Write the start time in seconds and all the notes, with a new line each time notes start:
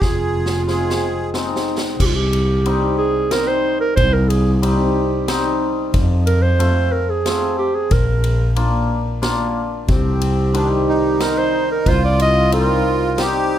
0.00 F1 G#4, kick, snare
0.04 F4
0.46 snare
0.67 G#3 C4 F4 G#4, snare
0.90 snare
1.34 G#3 C4 D#4, snare
1.56 snare
1.78 snare
2.00 C2 G4, kick, crash
2.06 F4
2.15 G4
2.33 ride
2.66 G3 C4 D#4, ride
2.98 G#4
3.31 G3 C4 D#4 A#4, snare, ride
3.48 C5
3.81 A#4
3.96 C2 C5, kick, ride
4.13 A#4
4.29 G#4, ride
4.54 G#4
4.61 G3 C4 D#4 G4, ride
5.28 G3 C4 D#4, snare, ride
5.94 F2, kick, ride
6.27 A#4, ride
6.43 C5
6.59 A3 C4 F4, ride
6.92 A#4
7.09 G#4
7.25 A3 C4 F4, snare, ride
7.58 G4
7.75 G#4
7.91 A#1 A#4, kick, ride
8.24 ride
8.56 A#3 D4 F4, ride
9.22 A#3 D4 F4, snare, ride
9.88 C2 C4 G4, kick, ride
10.21 ride
10.53 D#3 G3 C4 D4, ride
10.88 D#4
11.20 G3 C4 D#4 A#4, snare, ride
11.38 C5
11.71 A#4
11.86 C2 F4 C5, kick, ride
12.05 D5
12.20 D#5, ride
12.52 G3 C4 D#4 A#4, ride
13.17 G3 C4 D#4 G4, snare, ride